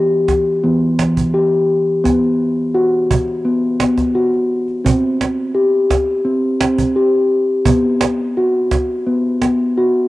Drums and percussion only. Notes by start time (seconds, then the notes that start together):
0.28 cajon bass, cajon slap
0.99 cajon slap
1.17 cajon bass
2.05 cajon bass, cajon slap
2.24 cajon slap
3.11 cajon bass
3.28 cajon slap
3.80 cajon slap
3.98 cajon bass, cajon slap
4.34 cajon slap
4.68 cajon slap
4.86 cajon bass
5.21 cajon slap
5.90 cajon bass, cajon slap
6.61 cajon slap
6.78 cajon bass
7.65 cajon bass
8.01 cajon slap
8.71 cajon bass, cajon slap
9.42 cajon slap